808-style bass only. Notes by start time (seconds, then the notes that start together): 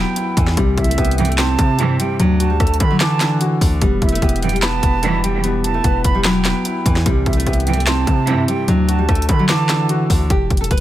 0.37 E2
0.57 C2
0.78 C2
0.98 C2
1.59 C3
2.19 D2
2.60 D2
2.80 D3
3.61 D2
3.82 E1
4.02 E1
4.22 E1
4.83 E1
5.84 E1
6.05 E1
6.86 E2
7.06 C2
7.26 C2
7.47 C2
8.07 C3
8.68 D2
9.09 D2
9.29 D3
10.10 D2
10.30 E1
10.51 E1
10.71 E1